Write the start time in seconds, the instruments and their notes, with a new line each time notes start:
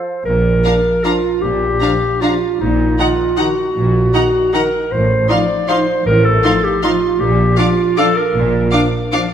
Already playing: clarinet C5
0.25 double bass section A#1, cello section A#2, clarinet A#4
0.65 french horn section F3 D4, viola section D4, violin section F5 A#5
1.04 french horn section F3 D4, viola section D4, clarinet F4, violin section F5 A#5
1.42 double bass section A#1, cello section A#2, clarinet G4
1.81 french horn section F3 D4, viola section D4, violin section F5 A#5
2.21 french horn section F3 D4, viola section D4, clarinet F4, violin section F5 A#5
2.60 double bass section A#1, cello section A#2, clarinet D#4
2.98 french horn section D#3 D#4, viola section D#4, clarinet F4, violin section F#5 A#5
3.37 french horn section D#3 D#4, viola section D#4, clarinet F#4, violin section F#5 A#5
3.76 double bass section A#1, cello section A#2
4.13 french horn section D#3 D#4, viola section D#4, violin section F#5 A#5
4.53 french horn section D#3 D#4, viola section D#4, clarinet A#4, violin section F#5 A#5
4.92 double bass section A1, cello section A2, clarinet C5
5.29 french horn section F3 D#4, viola section D#4, clarinet D5, violin section F5 C6
5.68 french horn section F3 D#4, viola section D#4, clarinet C5, violin section F5 C6
6.06 double bass section A1, cello section A2, clarinet A#4
6.24 clarinet A4
6.44 french horn section F3 D#4, viola section D#4, violin section F5 C6
6.64 clarinet G4
6.83 french horn section F3 D#4, viola section D#4, clarinet F4, violin section F5 C6
7.20 double bass section A#1, cello section A#2, clarinet G4
7.58 french horn section F3 D4, viola section D4, clarinet F4, violin section F5 D6
7.97 french horn section F3 D4, viola section D4, clarinet A4, violin section F5 D6
8.17 clarinet A#4
8.35 double bass section A#1, cello section A#2
8.72 french horn section F3 D4, viola section D4, violin section F5 D6
9.12 french horn section F3 D4, viola section D4, violin section F5 D6